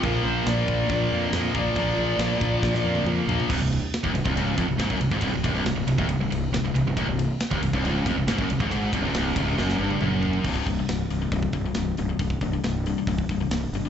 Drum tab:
CC |x---x---x---x---|x---x-----------|x---------------|----------------|
RD |----------------|----------------|--x-x-x-x-x-x-x-|x-x-x-x-x-x-x-x-|
HH |----------------|----------------|----------------|----------------|
SD |----o-------o---|----o---oo------|----o-------o---|----o-------o---|
T1 |----------------|-----------o----|----------------|----------------|
T2 |----------------|------------o---|----------------|----------------|
FT |----------------|--------------oo|----------------|----------------|
BD |o-----o-o-----o-|o-----o-o-------|o----o-o--o--o-o|o-o----o--------|

CC |----------------|----------------|x---------------|----------------|
RD |x-x-x-x-x-x-x-x-|x-x-x-x---------|----------------|----------------|
HH |----------------|----------------|--o-o-o-o-o-o-o-|o-o-o-o-o-o-o-o-|
SD |----o-------o---|----o---oo------|----o-------o---|----o-------o---|
T1 |----------------|-----------o----|----------------|----------------|
T2 |----------------|------------o---|----------------|----------------|
FT |----------------|--------------oo|----------------|----------------|
BD |o----o-o--o--o-o|o-o---o---------|ooo-----ooo-----|ooo-----ooo-----|